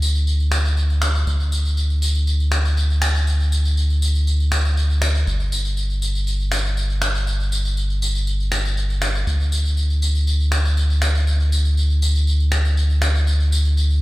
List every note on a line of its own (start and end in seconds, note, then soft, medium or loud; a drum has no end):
0.00 1.24 D2 medium
0.00 tambourine medium
0.15 tambourine soft
0.27 tambourine soft
0.40 tambourine soft
0.52 finger snap medium
0.52 tambourine medium
0.65 tambourine soft
0.77 tambourine soft
0.90 tambourine soft
1.02 finger snap medium
1.02 tambourine medium
1.15 tambourine soft
1.27 5.24 D2 medium
1.27 tambourine soft
1.40 tambourine soft
1.52 tambourine medium
1.65 tambourine soft
1.77 tambourine soft
1.90 tambourine soft
2.02 tambourine medium
2.15 tambourine soft
2.27 tambourine soft
2.40 tambourine soft
2.52 finger snap medium
2.52 tambourine medium
2.65 tambourine soft
2.77 tambourine soft
2.90 tambourine soft
3.02 finger snap medium
3.02 tambourine medium
3.15 tambourine soft
3.27 tambourine soft
3.40 tambourine soft
3.52 tambourine medium
3.65 tambourine soft
3.77 tambourine soft
3.90 tambourine soft
4.02 tambourine medium
4.15 tambourine soft
4.27 tambourine soft
4.40 tambourine soft
4.52 finger snap medium
4.52 tambourine medium
4.65 tambourine soft
4.77 tambourine soft
4.90 tambourine soft
5.02 finger snap medium
5.02 tambourine medium
5.15 tambourine soft
5.27 9.24 G1 medium
5.27 tambourine soft
5.40 tambourine soft
5.52 tambourine medium
5.65 tambourine soft
5.77 tambourine soft
5.90 tambourine soft
6.02 tambourine medium
6.15 tambourine soft
6.27 tambourine soft
6.40 tambourine soft
6.52 finger snap medium
6.52 tambourine medium
6.65 tambourine soft
6.77 tambourine soft
6.90 tambourine soft
7.02 finger snap medium
7.02 tambourine medium
7.15 tambourine soft
7.27 tambourine soft
7.40 tambourine soft
7.52 tambourine medium
7.65 tambourine soft
7.77 tambourine soft
7.90 tambourine soft
8.02 tambourine medium
8.15 tambourine soft
8.27 tambourine soft
8.40 tambourine soft
8.52 finger snap medium
8.52 tambourine medium
8.65 tambourine soft
8.77 tambourine soft
8.90 tambourine soft
9.02 finger snap medium
9.02 tambourine medium
9.15 tambourine soft
9.27 14.02 D2 medium
9.27 tambourine soft
9.40 tambourine soft
9.52 tambourine medium
9.65 tambourine soft
9.77 tambourine soft
9.90 tambourine soft
10.02 tambourine medium
10.15 tambourine soft
10.27 tambourine soft
10.40 tambourine soft
10.52 finger snap medium
10.52 tambourine medium
10.65 tambourine soft
10.77 tambourine soft
10.90 tambourine soft
11.02 finger snap medium
11.02 tambourine medium
11.15 tambourine soft
11.27 tambourine soft
11.40 tambourine soft
11.52 tambourine medium
11.65 tambourine soft
11.77 tambourine soft
11.90 tambourine soft
12.02 tambourine medium
12.15 tambourine soft
12.27 tambourine soft
12.40 tambourine soft
12.52 finger snap medium
12.52 tambourine medium
12.65 tambourine soft
12.77 tambourine soft
12.90 tambourine soft
13.02 finger snap medium
13.02 tambourine medium
13.15 tambourine soft
13.27 tambourine soft
13.40 tambourine soft
13.52 tambourine medium
13.65 tambourine soft
13.77 tambourine soft
13.90 tambourine soft